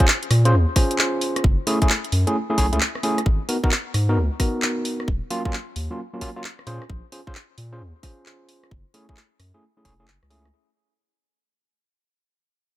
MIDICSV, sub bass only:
0, 0, Header, 1, 2, 480
1, 0, Start_track
1, 0, Tempo, 454545
1, 1522, Time_signature, 4, 2, 24, 8
1, 13480, End_track
2, 0, Start_track
2, 0, Title_t, "Sub bass"
2, 0, Program_c, 0, 38
2, 322, Note_on_c, 0, 46, 102
2, 562, Note_on_c, 0, 39, 86
2, 578, Note_off_c, 0, 46, 0
2, 696, Note_off_c, 0, 39, 0
2, 1522, Note_on_c, 0, 30, 95
2, 1656, Note_off_c, 0, 30, 0
2, 2243, Note_on_c, 0, 42, 98
2, 2376, Note_off_c, 0, 42, 0
2, 2723, Note_on_c, 0, 35, 93
2, 2856, Note_off_c, 0, 35, 0
2, 2879, Note_on_c, 0, 37, 76
2, 2950, Note_off_c, 0, 37, 0
2, 3443, Note_on_c, 0, 32, 100
2, 3576, Note_off_c, 0, 32, 0
2, 4163, Note_on_c, 0, 44, 101
2, 4402, Note_on_c, 0, 37, 87
2, 4418, Note_off_c, 0, 44, 0
2, 4536, Note_off_c, 0, 37, 0
2, 5363, Note_on_c, 0, 27, 92
2, 5496, Note_off_c, 0, 27, 0
2, 6083, Note_on_c, 0, 39, 94
2, 6216, Note_off_c, 0, 39, 0
2, 7042, Note_on_c, 0, 46, 93
2, 7176, Note_off_c, 0, 46, 0
2, 7282, Note_on_c, 0, 34, 94
2, 7416, Note_off_c, 0, 34, 0
2, 8002, Note_on_c, 0, 46, 99
2, 8243, Note_on_c, 0, 39, 83
2, 8259, Note_off_c, 0, 46, 0
2, 8377, Note_off_c, 0, 39, 0
2, 9202, Note_on_c, 0, 30, 93
2, 9336, Note_off_c, 0, 30, 0
2, 9921, Note_on_c, 0, 42, 98
2, 10056, Note_off_c, 0, 42, 0
2, 10402, Note_on_c, 0, 28, 88
2, 10559, Note_on_c, 0, 30, 75
2, 10575, Note_off_c, 0, 28, 0
2, 10753, Note_off_c, 0, 30, 0
2, 10799, Note_on_c, 0, 37, 86
2, 11102, Note_off_c, 0, 37, 0
2, 13480, End_track
0, 0, End_of_file